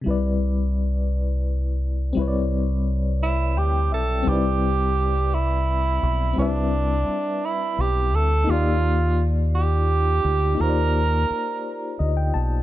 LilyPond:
<<
  \new Staff \with { instrumentName = "Tenor saxophone" } { \time 6/8 \key c \major \tempo 4. = 57 r2. | r4. e'8 g'8 a'8 | g'4. e'4. | d'4. e'8 g'8 a'8 |
f'4 r8 g'4. | bes'2 r4 | }
  \new Staff \with { instrumentName = "FM electric piano" } { \time 6/8 \key c \major << { r2. | r2 g''8 e''8 | r2. | r2. |
r2. | r2 ees''16 g''16 a''8 | } \\ { <c g e' b' d''>2. | <g c' e' b' des'' d''>2. | <g c' ees' e' b' d''>2. | <g c' e' b' e''>2. |
<bes ees' f' g' d''>2. | <bes ees' f' g' c'' d''>2. | } >> }
  \new Staff \with { instrumentName = "Fingered electric bass" } { \clef bass \time 6/8 \key c \major c,2. | c,2 d,8 b,,8 | c,2~ c,8 b,,8 | c,4 r4 b,,8 d,8 |
ees,2~ ees,8 d,8 | ees,4 r4 d,8 b,,8 | }
>>